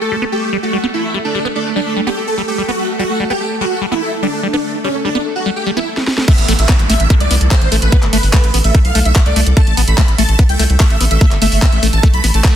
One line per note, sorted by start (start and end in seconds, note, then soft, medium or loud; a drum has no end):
0.00 6.27 A3 medium
0.00 6.27 A4 medium
0.00 0.19 A4 medium
0.12 0.16 G3 medium
0.22 0.25 B3 loud
0.32 0.50 G4 loud
0.53 0.57 G3 medium
0.63 0.80 F#4 loud
0.73 0.78 G3 medium
0.84 0.86 B3 loud
0.94 1.11 E4 medium
1.14 1.19 G3 medium
1.25 1.42 D4 medium
1.35 1.39 G3 medium
1.45 1.48 B3 loud
1.55 1.67 D4 medium
1.76 1.81 G3 medium
1.76 1.93 D4 medium
1.97 2.01 G3 medium
2.07 2.10 B3 loud
2.07 2.18 G4 medium
2.27 2.39 A4 medium
2.38 2.42 G3 medium
2.48 2.60 G4 medium
2.58 2.63 G3 medium
2.68 2.71 B3 loud
2.68 2.86 F#4 loud
2.99 3.04 G3 medium
2.99 3.17 F#4 loud
3.20 3.24 G3 medium
3.30 3.33 B3 loud
3.30 3.48 G4 loud
3.61 3.65 G3 medium
3.61 3.78 F#4 loud
3.81 3.86 G3 medium
3.92 3.94 B3 medium
3.92 4.09 E4 medium
4.23 4.27 G3 medium
4.23 4.40 D4 medium
4.43 4.48 G3 medium
4.53 4.56 B3 loud
4.53 4.71 D4 medium
4.84 4.89 G3 medium
4.84 4.96 C#4 medium
5.05 5.09 G3 medium
5.05 5.22 D4 medium
5.15 5.18 B3 loud
5.36 5.47 F#4 medium
5.46 5.50 G3 medium
5.56 5.68 G4 medium
5.66 5.71 G3 medium
5.77 5.79 B3 loud
5.77 5.87 E4 medium
5.97 snare medium
6.07 snare medium
6.18 snare medium
6.28 12.56 A3 medium
6.28 6.33 A3 loud
6.28 12.56 A4 medium
6.28 6.46 E5 loud
6.28 kick loud
6.28 closed hi-hat medium
6.28 crash loud
6.28 downlifter medium
6.38 6.45 A1 medium
6.38 closed hi-hat medium
6.49 6.55 A1 loud
6.49 6.53 A3 loud
6.49 open hi-hat loud
6.59 6.65 A1 medium
6.59 6.76 E5 medium
6.59 closed hi-hat medium
6.69 6.74 B3 medium
6.69 kick loud
6.69 clap loud
6.69 closed hi-hat medium
6.79 6.86 A1 medium
6.79 closed hi-hat medium
6.90 6.96 A1 loud
6.90 6.94 A3 loud
6.90 7.07 E5 loud
6.90 open hi-hat loud
7.00 7.06 A1 medium
7.00 closed hi-hat medium
7.10 7.15 A3 loud
7.10 kick loud
7.10 closed hi-hat medium
7.20 7.27 C2 medium
7.20 7.38 D5 loud
7.20 closed hi-hat medium
7.31 7.37 C2 loud
7.31 7.35 B3 medium
7.31 open hi-hat loud
7.41 7.48 C2 loud
7.41 closed hi-hat medium
7.51 7.56 A3 loud
7.51 7.69 C5 medium
7.51 kick loud
7.51 clap loud
7.51 closed hi-hat medium
7.62 7.68 A1 medium
7.62 closed hi-hat medium
7.72 7.78 A1 loud
7.72 7.76 A3 loud
7.72 open hi-hat loud
7.82 7.89 A1 medium
7.82 8.00 B4 loud
7.82 closed hi-hat medium
7.92 7.97 B3 medium
7.92 kick loud
7.92 closed hi-hat medium
8.03 8.09 G1 medium
8.03 clap soft
8.03 closed hi-hat medium
8.13 8.19 G1 medium
8.13 8.18 A3 loud
8.13 8.25 B4 medium
8.13 open hi-hat loud
8.23 8.30 G1 medium
8.23 open hi-hat medium
8.33 8.38 A3 loud
8.33 8.51 B4 loud
8.33 kick loud
8.33 clap loud
8.33 closed hi-hat medium
8.44 8.50 A1 medium
8.44 closed hi-hat medium
8.54 8.61 A1 loud
8.54 8.59 B3 medium
8.54 open hi-hat loud
8.64 8.71 A1 loud
8.64 8.76 E5 medium
8.64 closed hi-hat medium
8.75 8.79 A3 loud
8.75 kick loud
8.75 closed hi-hat medium
8.85 8.91 B1 medium
8.85 8.97 F5 loud
8.85 closed hi-hat medium
8.95 9.02 B1 loud
8.95 9.00 A3 loud
8.95 open hi-hat loud
9.05 9.12 B1 medium
9.05 9.17 E5 medium
9.05 closed hi-hat medium
9.16 9.20 B3 medium
9.16 kick loud
9.16 clap loud
9.16 closed hi-hat medium
9.26 9.32 C2 medium
9.26 9.44 D5 medium
9.26 closed hi-hat medium
9.36 9.43 C2 loud
9.36 9.41 A3 loud
9.36 open hi-hat loud
9.46 9.53 C2 medium
9.46 closed hi-hat medium
9.57 9.61 A3 loud
9.57 9.74 A5 loud
9.57 kick loud
9.57 closed hi-hat medium
9.67 9.74 A1 medium
9.67 closed hi-hat medium
9.77 9.84 A1 loud
9.77 9.82 B3 medium
9.77 open hi-hat loud
9.88 9.94 A1 medium
9.88 10.05 B5 medium
9.88 closed hi-hat medium
9.98 10.02 A3 loud
9.98 kick loud
9.98 clap loud
9.98 closed hi-hat medium
10.08 10.15 A1 medium
10.08 closed hi-hat medium
10.18 10.25 A1 loud
10.18 10.23 A3 loud
10.18 10.36 A5 loud
10.18 open hi-hat loud
10.29 10.35 A1 medium
10.29 closed hi-hat medium
10.39 10.44 B3 medium
10.39 kick loud
10.39 closed hi-hat medium
10.49 10.56 C2 medium
10.49 10.67 G5 loud
10.49 closed hi-hat medium
10.59 10.66 C2 loud
10.59 10.64 A3 loud
10.59 open hi-hat loud
10.70 10.76 C2 medium
10.70 closed hi-hat medium
10.80 10.85 A3 loud
10.80 10.98 E5 medium
10.80 kick loud
10.80 clap loud
10.80 closed hi-hat medium
10.90 10.97 A1 medium
10.90 closed hi-hat medium
11.01 11.07 A1 loud
11.01 11.05 B3 medium
11.01 open hi-hat loud
11.11 11.17 A1 loud
11.11 11.28 E5 medium
11.11 closed hi-hat medium
11.21 11.26 A3 loud
11.21 kick loud
11.21 closed hi-hat medium
11.31 11.38 G1 medium
11.31 clap soft
11.31 closed hi-hat medium
11.42 11.48 G1 loud
11.42 11.46 A3 loud
11.42 11.53 E5 medium
11.42 open hi-hat loud
11.52 11.58 G1 medium
11.52 open hi-hat medium
11.62 11.67 B3 medium
11.62 11.80 E5 medium
11.62 kick loud
11.62 clap loud
11.62 closed hi-hat medium
11.73 11.79 A1 medium
11.73 closed hi-hat medium
11.83 11.89 A1 loud
11.83 11.87 A3 loud
11.83 open hi-hat loud
11.93 12.00 A1 medium
11.93 12.05 A5 medium
11.93 closed hi-hat soft
12.03 12.08 A3 loud
12.03 kick loud
12.03 closed hi-hat medium
12.14 12.20 B1 medium
12.14 12.25 B5 medium
12.14 closed hi-hat medium
12.24 12.30 A1 loud
12.24 12.27 B3 medium
12.24 open hi-hat loud
12.34 12.41 A1 medium
12.34 12.46 A5 medium
12.34 closed hi-hat medium
12.44 12.56 A3 medium
12.44 kick loud
12.44 clap loud
12.44 closed hi-hat medium